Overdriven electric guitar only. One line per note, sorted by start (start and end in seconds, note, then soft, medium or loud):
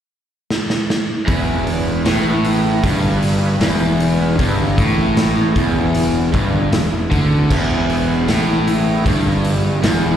1.27 2.04 E2 loud
2.06 2.82 A2 loud
2.85 3.61 G2 loud
3.61 4.38 E2 loud
4.40 4.77 G2 medium
4.79 5.55 A2 medium
5.56 6.32 E2 loud
6.34 6.71 G2 medium
6.73 7.04 E2 medium
7.11 7.49 D3 loud
7.50 8.27 E2 loud
8.27 9.04 A2 loud
9.05 9.82 G2 loud
9.83 10.17 E2 loud